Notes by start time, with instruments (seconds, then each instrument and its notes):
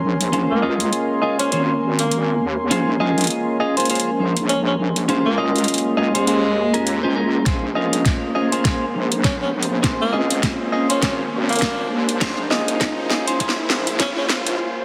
Already playing: ambient pad G#3 A#3 C#4, analog synth pad C#4 A#4 G#5 C6, riser
0.03 wobble bass A#1
0.21 closed hi-hat
0.33 clean electric guitar C#4 F4 G#4 C5, closed hi-hat
0.50 wobble bass C#2, tenor saxophone A#3
0.62 clean electric guitar C#4 F4 G#4 D#5
0.80 closed hi-hat
0.93 closed hi-hat
1.22 clean electric guitar C#4 F4 G#4 D#5
1.39 tenor saxophone C#4, clean electric guitar C#4 F4 G#4 C5, closed hi-hat
1.51 wobble bass G#1, clean electric guitar C#4 F4 G#4 C5, tenor saxophone C#4, closed hi-hat
1.99 tenor saxophone A#3, closed hi-hat
2.12 closed hi-hat
2.41 wobble bass D#2
2.70 wobble bass A#1, clean electric guitar C#4 F4 G#4 C5, closed hi-hat
3.00 clean electric guitar C#4 F4 G#4 D#5
3.18 closed hi-hat
3.21 closed hi-hat
3.24 closed hi-hat
3.27 closed hi-hat
3.30 closed hi-hat
3.60 clean electric guitar C#4 F4 G#4 D#5
3.77 clean electric guitar C#4 F4 G#4 C5, closed hi-hat
3.80 closed hi-hat
3.85 closed hi-hat
3.90 clean electric guitar C#4 F4 G#4 C5, closed hi-hat
3.95 closed hi-hat
4.00 closed hi-hat
4.19 wobble bass A#1
4.37 closed hi-hat
4.49 tenor saxophone C#4, closed hi-hat
4.67 tenor saxophone C#4
4.79 wobble bass A#1
4.96 closed hi-hat
5.08 clean electric guitar C#4 F4 G#4 C5, closed hi-hat
5.25 wobble bass C#2, tenor saxophone A#3
5.38 clean electric guitar C#4 F4 G#4 D#5
5.56 closed hi-hat
5.58 closed hi-hat
5.64 closed hi-hat
5.68 closed hi-hat
5.74 closed hi-hat
5.78 closed hi-hat
5.97 wobble bass C#2, clean electric guitar C#4 F4 G#4 D#5
6.15 wobble bass D#2, tenor saxophone G#3, clean electric guitar C#4 F4 G#4 C5, closed hi-hat
6.27 clean electric guitar C#4 F4 G#4 C5, closed hi-hat
6.74 clean electric guitar C#4 F4 G#4 A#4, closed hi-hat
6.87 closed hi-hat
7.03 wobble bass C#2, clean electric guitar C#4 F4 G#4 C5
7.16 clean electric guitar C#4 F4 G#4 A#4
7.46 wobble bass A#1, clean electric guitar C#4 F4 G#4 C5, ambient pad C5, kick, snare, closed hi-hat
7.75 clean electric guitar C#4 F4 G#4 D#5
7.93 closed hi-hat
8.05 kick, snare, closed hi-hat
8.35 clean electric guitar C#4 F4 G#4 D#5
8.52 clean electric guitar C#4 F4 G#4 C5, closed hi-hat
8.64 clean electric guitar C#4 F4 G#4 C5, kick, snare, closed hi-hat
8.95 wobble bass A#1
9.12 closed hi-hat
9.24 tenor saxophone C#4, kick, snare, closed hi-hat
9.42 tenor saxophone C#4
9.54 wobble bass A#1
9.63 closed hi-hat
9.83 clean electric guitar C#4 F4 G#4 C5, kick, snare, closed hi-hat
10.01 wobble bass C#2, tenor saxophone A#3
10.13 clean electric guitar C#4 F4 G#4 D#5
10.30 closed hi-hat
10.43 kick, snare, closed hi-hat
10.72 clean electric guitar C#4 F4 G#4 D#5
10.89 tenor saxophone C#4, clean electric guitar C#4 F4 G#4 C5, closed hi-hat
11.02 wobble bass G#1, clean electric guitar C#4 F4 G#4 C5, tenor saxophone C#4, kick, snare, closed hi-hat
11.49 tenor saxophone A#3, closed hi-hat
11.53 closed hi-hat
11.56 closed hi-hat
11.59 snare, closed hi-hat
11.62 kick, closed hi-hat
11.91 wobble bass D#2
12.09 closed hi-hat
12.21 wobble bass A#1, clean electric guitar C#4 F4 G#4 C5, kick, snare, closed hi-hat
12.24 snare
12.27 snare
12.30 snare
12.36 snare
12.51 clean electric guitar C#4 F4 G#4 D#5, snare
12.68 closed hi-hat
12.81 kick, snare, closed hi-hat
13.10 clean electric guitar C#4 F4 G#4 D#5, snare
13.27 clean electric guitar C#4 F4 G#4 C5, closed hi-hat
13.40 clean electric guitar C#4 F4 G#4 C5, kick, closed hi-hat
13.49 snare
13.70 wobble bass A#1, snare
13.87 closed hi-hat
14.00 tenor saxophone C#4, kick, snare, closed hi-hat
14.17 tenor saxophone C#4
14.29 wobble bass A#1, snare
14.47 closed hi-hat